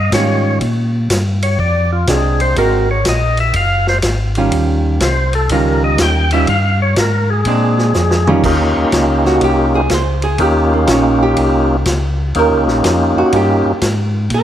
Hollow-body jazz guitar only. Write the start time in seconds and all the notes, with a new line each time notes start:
0.14 D#3 G3 C#4 F4
2.08 G#3 C4 D4
2.57 G#3 C4 F#4 A#4
4.37 D#3 G3 C#4 F4
5.51 D#3 G3 C#4 F4
6.33 D#3 G3 C#4 F4
7.47 G#3 C4 D4
8.28 D#3 G3 C#4 F4
9.27 F#4
9.44 G4
9.75 G#4
9.94 C5
10.24 G#4
10.42 G4
10.74 A#3
10.91 C#4
11.23 G4
12.39 A#4
13.18 F#4
13.36 G4
14.34 A#4